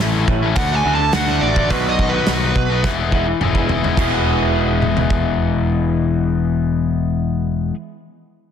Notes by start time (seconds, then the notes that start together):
0.00 A1 A2 E3 A3 C#4 E4
0.27 A1 E3 A3 C#4 E4, muted overdriven electric guitar stroke, kick
0.43 A3 C#4 E4
0.56 D2 D3 A3 D4 F#4 F#5, kick, open hi-hat
0.70 A3 D4 F#4, muted clean electric guitar stroke
0.75 G#5
0.84 D2 D3 F#3 A3 D4 E4 F#4
0.95 A5
0.99 muted overdriven electric guitar stroke
1.13 D2 D3 A3 D4 F#4 F#5, snare, open hi-hat
1.27 F#3 A3 D4 E4
1.41 A1 D3 A3 D4 F#4 D5
1.56 A3 D4 F#4, kick
1.70 B1 B2 D#3 F#3 B3 D#4 F#4 B4, kick, open hi-hat
1.89 D#5
1.99 kick
2.09 F#4 B4
2.14 F#3 B3 D#4 F#4
2.26 B1 B2 D#3 F#3 B3 F#4, snare, open hi-hat
2.55 B1 F#3 B3 D#4 F#4, muted overdriven electric guitar stroke, kick
2.70 F#3 B3 F#4
2.83 E1 E3 G#3 B3 E4, kick, snare
2.98 G#3 B3 E4, muted clean electric guitar stroke
3.12 E3 G#3 B3 E4, kick
3.28 muted overdriven electric guitar stroke
3.41 E1 E3 G#3 B3 E4, mid tom
3.54 E3 G#3 B3 E4, kick
3.68 E3 G#3 B3 E4, floor tom
3.83 G#3 B3 E4, floor tom
3.95 E1 E2 B2 E3 G#3 B3 E4, kick, crash
3.99 E4 G#4
4.82 mid tom
4.97 floor tom
5.10 kick